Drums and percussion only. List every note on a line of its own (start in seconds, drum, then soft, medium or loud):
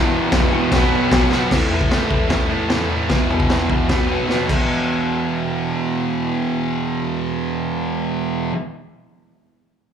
0.32 kick loud
0.32 snare loud
0.32 crash medium
0.72 kick loud
0.72 snare loud
0.72 crash medium
1.12 kick loud
1.12 snare loud
1.12 crash medium
1.32 snare medium
1.51 kick loud
1.51 snare loud
1.51 floor tom medium
1.51 crash loud
1.71 floor tom medium
1.81 kick medium
1.91 snare loud
1.91 floor tom medium
2.11 kick medium
2.11 floor tom medium
2.30 kick loud
2.30 snare loud
2.30 floor tom medium
2.50 floor tom medium
2.70 snare loud
2.70 floor tom medium
2.91 floor tom medium
3.10 kick medium
3.10 snare loud
3.10 floor tom medium
3.30 floor tom medium
3.40 kick medium
3.50 snare loud
3.50 floor tom medium
3.70 kick medium
3.70 floor tom medium
3.89 kick loud
3.89 snare loud
3.89 floor tom medium
4.09 floor tom medium
4.29 snare medium
4.49 kick medium
4.49 crash medium